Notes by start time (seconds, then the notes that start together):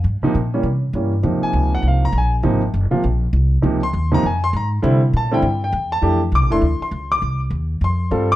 0.04 G2
0.22 C3 F3 A#3 D#4, muted upright bass stroke
0.35 A#2
0.54 E3 G3 A#3 C#4
0.63 C3
0.93 G2 E3 G3 A#3 C#4
1.23 F2 C3 F3 A#3 D#4
1.42 G#5, muted upright bass stroke
1.53 C#2
1.75 F#5
1.82 C2
1.88 F5
2.05 A#5
2.12 A#1
2.18 G#5
2.43 G#1 C3 F3 A#3 D#4
2.74 F#1
2.91 C3 F3 A#3 F4, muted upright bass stroke
3.04 A#1
3.33 C2
3.62 C#2 C3 F3 A#3 D#4
3.83 C6
3.93 D#2
4.11 C3 F3 A#3 D#4 A#5
4.23 F2 G#5
4.44 C6
4.53 G#2 A#5
4.82 C3 D3 G3 C4 E4
5.13 A#2 A5
5.31 D3 G3 C4 E4 G5
5.42 G2
5.64 G5
5.72 E2
5.92 A5
6.02 F2 E3 A3 D4 G4
6.32 C2 D6
6.42 A1
6.50 F1 E3 A3 D4 E4 C6
6.61 D2
6.81 C6, muted upright bass stroke
6.91 C#2
7.12 D6
7.22 C2
7.50 D#2
7.81 F2 C6
8.11 G2 G3 C4 F4 A4
8.32 D6